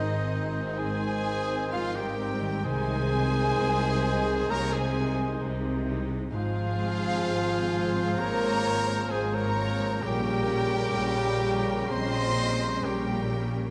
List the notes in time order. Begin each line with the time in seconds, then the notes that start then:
Already playing: G#1 G#2 D#3 C4 D#4 G#4 C5 D#5
0.02 D#4
0.28 C4 D#4 D#5
0.53 C6
0.77 G#1 G#2 G#3 G#4 C5 D#5 G#5
1.01 C6
1.25 C4 D#4 D#5
1.48 C6
1.72 G#1 G#2 F3 F4 G#4 C5 F5
1.95 G3 D#4 G4 A#4 G5
2.18 C4 D#4
2.40 D#3
2.64 C2 C3 D#3 G#3 D#4 G#4 C5 G#5
2.68 C5
2.87 G#3
3.11 G#3 C4 D#4
3.34 D#4
3.58 C2 C3 C5
3.81 D#4
4.03 G#3 D#4
4.27 C6
4.49 C2 C3 A#3 A#4 C#5 D#5 A#5
4.72 G#3 G#4 C5 G#5 C6
4.95 G#3 D#4 D#5
5.20 C6
5.41 C2 C3 C5
5.65 D#4
5.87 G#3 C4 D#4
6.10 G#3
6.32 G#1 G#2 F3 F4 G#4 C5 F5
6.55 G#3
6.77 G#3 C4
7.01 G#4
7.23 G#1 G#2 C5
7.47 G#4
7.70 G#3 C4 G#5
7.94 C6
8.18 G#1 G#2 A#3 A#4 C#5 G#5 A#5
8.42 C6
8.64 G#3 C4 G#5
8.88 C6
9.09 G#1 G#2 G#3 G#4 C5 G#5
9.32 A#3 G#4 A#4 C#5 A#5
9.56 G#3 C4
9.80 G#3
10.01 A#1 A#2 C#3 G3 C#4 G4 A#4 G5
10.24 A#3
10.46 G3 C#4
10.69 G4
10.92 A#1 A#2 A#4
11.16 C#5
11.41 G3 C#4 G5
11.66 A#5
11.89 A#1 A#2 C4 C5 D#5 G5 C6
12.14 A#5
12.37 G3 C#4 G5
12.61 A#5
12.83 A#1 A#2 G3 G4 A#4 C#5 G5
13.08 A#4
13.31 G3 C#4 G4
13.55 C#4